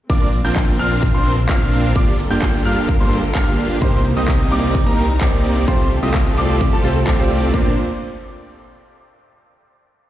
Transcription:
0.10 analog synth bass A#1, string section A#3 C4, supersaw synth C4 D4 F4 A#4 D5, grand piano D6, kick, closed hi-hat, shaker
0.21 closed hi-hat, shaker
0.33 open hi-hat, shaker
0.44 analog synth bass A#1, supersaw synth C4 D4 F4 A#4 G5, grand piano G6, closed hi-hat, shaker
0.56 kick, clap, closed hi-hat, shaker
0.68 closed hi-hat, shaker
0.79 analog synth bass A#1, supersaw synth C4 D4 F4 A#4 F5, grand piano F6, open hi-hat, shaker
0.91 closed hi-hat, shaker
1.03 kick, closed hi-hat, shaker
1.14 analog synth bass A#1, supersaw synth C4 D4 F4 A#4 C5, grand piano C6, closed hi-hat, shaker
1.26 open hi-hat, shaker
1.38 closed hi-hat, shaker
1.49 analog synth bass A#1, supersaw synth C4 D4 F4 A#4 F5, grand piano F6, kick, clap, closed hi-hat, shaker
1.61 closed hi-hat, shaker
1.72 open hi-hat, shaker
1.84 closed hi-hat, shaker
1.96 analog synth bass G1, string section G3 F4 A4 A#4, supersaw synth A#3 D4 F4 G4 D5, grand piano D6, kick, closed hi-hat, shaker
2.07 closed hi-hat, shaker
2.19 open hi-hat, shaker
2.31 analog synth bass G1, supersaw synth A#3 D4 F4 G4 G5, grand piano G6, closed hi-hat, shaker
2.42 kick, clap, closed hi-hat, shaker
2.54 closed hi-hat, shaker
2.65 analog synth bass G1, supersaw synth A#3 D4 F4 G4 F5, grand piano F6, open hi-hat, shaker
2.77 closed hi-hat, shaker
2.89 kick, closed hi-hat, shaker
3.00 analog synth bass G1, supersaw synth A#3 D4 F4 G4 C5, grand piano C6, closed hi-hat, shaker
3.12 open hi-hat, shaker
3.24 closed hi-hat, shaker
3.35 analog synth bass G1, supersaw synth A#3 D4 F4 G4 F5, grand piano F6, kick, clap, closed hi-hat, shaker
3.47 closed hi-hat, shaker
3.58 open hi-hat, shaker
3.70 closed hi-hat, shaker
3.81 analog synth bass C2, felt piano C3 A#3 D#4 G4 C5, string section C3 G3 A#3 D#4, supersaw synth A#3 C4 D#4 G4 C5, grand piano C6, kick, closed hi-hat, shaker
3.93 closed hi-hat, shaker
4.05 open hi-hat, shaker
4.17 analog synth bass C2, supersaw synth A#3 C4 D#4 G4 D#5, grand piano D#6, closed hi-hat, shaker
4.28 kick, clap, closed hi-hat, shaker
4.40 closed hi-hat, shaker
4.51 analog synth bass C2, supersaw synth A#3 C4 D#4 G4 D5, grand piano D6, open hi-hat, shaker
4.63 closed hi-hat, shaker
4.75 kick, closed hi-hat, shaker
4.86 analog synth bass C2, supersaw synth A#3 C4 D#4 G4 A#4, grand piano A#5, closed hi-hat, shaker
4.98 open hi-hat, shaker
5.10 closed hi-hat, shaker
5.21 analog synth bass C2, felt piano C3 A#3 D#4 G4 C5, supersaw synth A#3 C4 D#4 G4 D5, grand piano D6, kick, clap, closed hi-hat, shaker
5.33 closed hi-hat, shaker
5.45 open hi-hat, shaker
5.56 closed hi-hat, shaker
5.67 analog synth bass C2, felt piano C3 A3 F4 G4 C5, supersaw synth A3 C4 F4 G4 C5, string section C4 F4 G4 A4, grand piano C6, kick, closed hi-hat, shaker
5.79 closed hi-hat, shaker
5.91 open hi-hat, shaker
6.03 analog synth bass C2, supersaw synth A3 C4 F4 G4 D#5, grand piano D#6, closed hi-hat, shaker
6.14 kick, clap, closed hi-hat, shaker
6.26 closed hi-hat, shaker
6.38 analog synth bass C2, supersaw synth A3 C4 F4 G4 D5, grand piano D6, open hi-hat, shaker
6.49 closed hi-hat, shaker
6.61 kick, closed hi-hat, shaker
6.72 analog synth bass C2, supersaw synth A3 C4 F4 G4 A4, grand piano A5, closed hi-hat, shaker
6.83 felt piano C3 A3 F4 G4 C5, open hi-hat, shaker
6.96 closed hi-hat, shaker
7.07 analog synth bass C2, supersaw synth A3 C4 F4 G4 D5, grand piano D6, kick, clap, closed hi-hat, shaker
7.18 felt piano C3 A3 F4 G4 C5, closed hi-hat, shaker
7.31 open hi-hat, shaker
7.42 closed hi-hat, shaker
7.52 analog synth bass A#1, string section A#2 A#3 D4 F4 C5, felt piano A#3 D4 F4 C5, supersaw synth C4 D4 F4 A#4 D5, grand piano D6, kick, crash

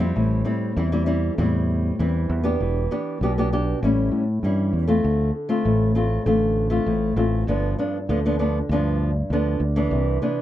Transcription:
Already playing: fingered electric bass F2, nylon-string guitar F2
0.00 nylon-string guitar G3 C4 E4
0.16 fingered electric bass A1, nylon-string guitar A2
0.45 nylon-string guitar G3 C4 E4
0.76 fingered electric bass E2, nylon-string guitar E3 G3 C4 E4
0.92 nylon-string guitar G3 C4 E4
1.06 nylon-string guitar G3 C4 E4
1.38 fingered electric bass E2, nylon-string guitar A2 G3 C4 E4
1.99 fingered electric bass E2, nylon-string guitar E3 G3 C4 E4
2.30 fingered electric bass E2
2.44 nylon-string guitar B3 D4 G4
2.60 fingered electric bass E1, nylon-string guitar E3
2.91 nylon-string guitar B3 D4 G4
3.21 fingered electric bass B1, nylon-string guitar B2 B3 D4 G4
3.38 nylon-string guitar B3 D4 G4
3.53 nylon-string guitar B3 D4 G4
3.83 fingered electric bass A1, nylon-string guitar A2 G3 C#4 E4
4.12 fingered electric bass A2
4.43 fingered electric bass G2, nylon-string guitar E3 G3 C#4 E4
4.73 fingered electric bass E2
4.88 nylon-string guitar A3 C4 F4
5.04 fingered electric bass D2, nylon-string guitar D3
5.49 nylon-string guitar A3 C4 F4
5.65 fingered electric bass A1, nylon-string guitar A2
5.95 nylon-string guitar A3 C4 F4
6.26 fingered electric bass A1, nylon-string guitar D3 A3 C4 F4
6.70 nylon-string guitar A3 C4 F4
6.86 fingered electric bass A1, nylon-string guitar A2
7.16 fingered electric bass A1, nylon-string guitar A3 C4 F4
7.47 fingered electric bass G1, nylon-string guitar G2 F3 B3 D4
7.78 nylon-string guitar F3 B3 D4
8.09 fingered electric bass D2, nylon-string guitar D3 F3 B3 D4
8.26 nylon-string guitar F3 B3 D4
8.39 nylon-string guitar F3 B3 D4
8.69 fingered electric bass D2, nylon-string guitar G2 F3 B3 D4
9.30 fingered electric bass D2, nylon-string guitar D3 F3 B3 D4
9.60 fingered electric bass D2
9.76 nylon-string guitar E3 B3 D4
9.91 fingered electric bass C2, nylon-string guitar C3
10.22 nylon-string guitar E3 B3 D4

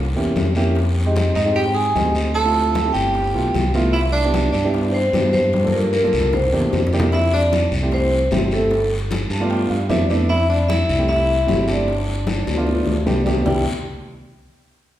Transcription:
Already playing: fingered electric bass C2
0.16 fingered electric bass E2, grand piano A#3 C#4 E4 G4, high bongo, high conga
0.36 fingered electric bass F2, high bongo, low bongo, high conga, short guiro
0.55 grand piano A#3 C#4 E4 G4, high bongo, high conga, short guiro
0.75 high bongo, high conga, long guiro
0.96 high conga
1.06 grand piano G#3 C4 D#4 G4
1.16 high bongo, high conga, short guiro
1.35 fingered electric bass G#2, tenor saxophone D#4, vibraphone D#5, high bongo, high conga, short guiro
1.45 grand piano G#3 C4 D#4 G4
1.56 tenor saxophone G4, vibraphone G5, high bongo, high conga, long guiro
1.74 tenor saxophone G#4, vibraphone G#5, high bongo, high conga
1.95 fingered electric bass D2, grand piano G#3 C4 D#4 G4, high bongo, low bongo, high conga, short guiro
2.15 high bongo, short guiro
2.34 tenor saxophone A4, vibraphone A5, high bongo, high conga, long guiro
2.45 grand piano A3 C4 E4 F4
2.56 high conga
2.74 high bongo, high conga, short guiro
2.84 grand piano A3 C4 E4 G4
2.93 fingered electric bass G1, tenor saxophone G4, vibraphone G5, high bongo, high conga, short guiro
3.14 high bongo, high conga, long guiro
3.34 fingered electric bass B1, grand piano A3 B3 E4 F4, high bongo, high conga
3.54 fingered electric bass C2, high bongo, low bongo, high conga, short guiro
3.74 grand piano A3 B3 E4 F4, high bongo, high conga, short guiro
3.93 tenor saxophone E4, vibraphone E5, high bongo, high conga, long guiro
4.12 tenor saxophone D4, vibraphone D5, high conga
4.25 grand piano B3 D4 E4 G4
4.34 high bongo, high conga, short guiro
4.52 fingered electric bass G2, tenor saxophone D4, vibraphone D5, high bongo, high conga, short guiro
4.64 grand piano B3 D4 E4 G4
4.74 high bongo, high conga, long guiro
4.92 tenor saxophone C4, vibraphone C5, high bongo, high conga
5.13 fingered electric bass G2, grand piano B3 D4 E4 G4, high bongo, low bongo, high conga, short guiro
5.33 tenor saxophone C4, vibraphone C5, high bongo, high conga, short guiro
5.53 high bongo, high conga, long guiro
5.64 grand piano A#3 D4 F4 A4, high conga
5.72 tenor saxophone A#3, vibraphone A#4
5.93 tenor saxophone A#3, vibraphone A#4, high bongo, short guiro
6.03 grand piano A#3 D4 F4 A4
6.07 high conga
6.13 fingered electric bass C2, high bongo, short guiro
6.20 low conga
6.33 tenor saxophone C4, vibraphone C5, high bongo, low conga, long guiro
6.53 fingered electric bass E2, grand piano A#3 D4 E4 G4, high bongo
6.60 low conga
6.73 fingered electric bass F2, high bongo, low bongo, low conga, short guiro
6.87 low conga
6.93 grand piano A#3 D4 E4 G4, high bongo, short guiro
7.00 low conga
7.12 tenor saxophone E4, vibraphone E5, high bongo, high conga, long guiro
7.33 tenor saxophone D4, vibraphone D5, high conga
7.52 high bongo, high conga, short guiro
7.72 fingered electric bass C2, high bongo, high conga, short guiro
7.82 grand piano A3 C4 E4 G4
7.92 tenor saxophone C4, vibraphone C5, high bongo, high conga, long guiro
8.12 high bongo, high conga
8.31 fingered electric bass G1, grand piano A3 C4 E4 G4, high bongo, low bongo, high conga, short guiro
8.51 grand piano A3 C4 E4 G4, tenor saxophone A3, vibraphone A4, high bongo, short guiro
8.70 high bongo, high conga, long guiro
8.92 high conga
9.11 high bongo, high conga, short guiro
9.30 fingered electric bass G2, grand piano A5, high bongo, high conga, short guiro
9.40 grand piano A3 B3 D4 F4
9.50 grand piano G5, high bongo, high conga, long guiro
9.70 fingered electric bass G2, grand piano F5, high bongo, high conga
9.89 fingered electric bass F2, grand piano A3 B3 D4 E4 E5, high bongo, low bongo, high conga, short guiro
10.10 grand piano A3 B3 D4 E4 D5, high bongo, high conga, short guiro
10.29 tenor saxophone E4, vibraphone E5, high bongo, high conga, long guiro
10.49 tenor saxophone D4, vibraphone D5, high conga
10.69 tenor saxophone E4, vibraphone E5, high bongo, high conga, short guiro
10.89 fingered electric bass C2, high bongo, high conga, short guiro
10.98 grand piano A3 C4 E4 G4
11.08 tenor saxophone E4, vibraphone E5, high bongo, high conga, long guiro
11.29 high bongo, high conga
11.47 fingered electric bass G1, grand piano A3 C4 E4 G4, high bongo, low bongo, high conga, short guiro
11.67 grand piano A3 C4 E4 G4, tenor saxophone D4, vibraphone D5, high bongo, short guiro
11.88 high bongo, high conga, long guiro
12.07 high conga
12.27 high bongo, high conga, short guiro
12.47 fingered electric bass D2, low bongo, high conga, short guiro
12.57 grand piano A3 B3 D4 F4
12.67 high bongo, high conga, long guiro
12.86 fingered electric bass D2, low bongo, high conga
13.05 fingered electric bass C2, grand piano A3 B3 D4 G4, low bongo, high conga, short guiro
13.26 grand piano A3 B3 D4 G4, low bongo, high conga, short guiro
13.46 fingered electric bass C2, tenor saxophone G3, grand piano G3 B3 D4 E4, vibraphone G5, low bongo, low conga, long guiro

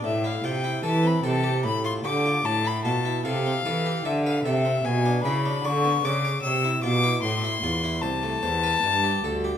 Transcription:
0.04 cello A2, harpsichord A2, violin E5
0.24 harpsichord E4, violin F5
0.44 cello C3, harpsichord C3 F4, violin G5
0.64 harpsichord E4
0.83 harpsichord E3 A4, cello E3, violin A5
1.03 harpsichord C4, violin B5
1.24 harpsichord C3 A4, cello C3, violin A5
1.44 harpsichord G4
1.64 harpsichord A2, cello A2, violin B5
1.84 harpsichord F4, violin C6
2.05 cello D3, harpsichord D3 G4, violin D6
2.26 harpsichord F4
2.45 harpsichord A2, cello A2, violin A5
2.65 harpsichord E4, violin B5
2.85 cello B2, harpsichord B2 F4, violin A5
3.05 harpsichord E4
3.25 harpsichord C3 A4, cello C3, violin F5
3.46 harpsichord C4
3.65 cello E3, harpsichord E3 A4
3.86 harpsichord G4
4.05 cello D3, harpsichord D3 A4, violin E5
4.26 harpsichord B4, violin F5
4.45 cello C3, harpsichord C3 A4, violin E5
4.65 harpsichord C4
4.85 cello B2, harpsichord B2, violin G#5
5.05 harpsichord D4
5.24 cello C#3, harpsichord C#3 E4, violin B5
5.45 harpsichord D4
5.64 cello D3, harpsichord D3 D5, violin C#6
5.84 harpsichord B3
6.04 cello C#3, harpsichord C#3 D5, violin D6
6.25 harpsichord C#5
6.43 cello C3, harpsichord C3, violin E6
6.64 harpsichord E4
6.83 harpsichord B2 F4, cello B2, violin D6
7.03 harpsichord E4
7.23 cello A2, harpsichord A2, violin C6
7.44 harpsichord E4
7.63 cello E2, harpsichord E2 F4
7.84 harpsichord E4
8.02 cello C2, harpsichord C2 C5, violin A5
8.23 harpsichord A3
8.43 harpsichord E2 C5, cello E2
8.63 harpsichord B4
8.82 cello G2, harpsichord G2
9.04 harpsichord G4
9.23 cello D2, harpsichord D2 A4
9.44 harpsichord G4

